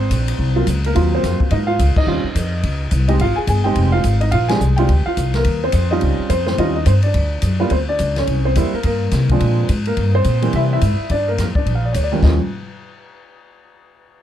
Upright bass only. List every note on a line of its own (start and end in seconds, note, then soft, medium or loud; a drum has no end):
0.10 0.38 A#1 medium
0.39 0.66 C2 medium
0.67 0.94 C#2 medium
0.96 1.22 D#2 medium
1.23 1.39 F2 medium
1.40 muted upright bass stroke soft
1.51 1.78 G#2 medium
1.79 1.95 C#2 medium
1.96 muted upright bass stroke soft
2.07 2.23 D#2 medium
2.24 muted upright bass stroke soft
2.35 2.63 F2 medium
2.64 2.91 C#2 medium
2.92 3.19 C2 medium
3.19 3.36 G#1 medium
3.38 muted upright bass stroke soft
3.47 3.75 G1 medium
3.76 4.03 F1 medium
4.04 4.32 G#1 medium
4.32 4.60 A#1 medium
4.61 4.88 C2 medium
4.89 5.05 D2 medium
5.07 muted upright bass stroke soft
5.17 5.44 C2 medium
5.45 5.72 D#2 medium
5.73 6.01 F2 medium
6.02 6.18 C#2 medium
6.19 muted upright bass stroke soft
6.30 6.57 F2 medium
6.58 6.85 D#2 medium
6.86 7.14 G2 medium
7.14 7.42 D2 medium
7.42 7.70 F#2 medium
7.71 7.98 D2 medium
8.00 8.27 C#2 medium
8.27 8.55 C2 medium
8.56 8.72 E2 medium
8.73 muted upright bass stroke soft
8.84 9.11 G2 medium
9.12 9.39 C3 medium
9.41 9.68 A#2 medium
9.69 9.96 G#2 medium
9.97 10.24 G2 medium
10.25 10.52 A#2 medium
10.54 10.80 C3 medium
10.82 10.97 G#2 medium
10.98 muted upright bass stroke soft
11.10 11.37 G2 medium
11.38 11.54 F2 medium
11.55 muted upright bass stroke soft
11.66 11.93 A#1 medium
11.95 12.22 D2 medium
12.23 12.38 D#2 medium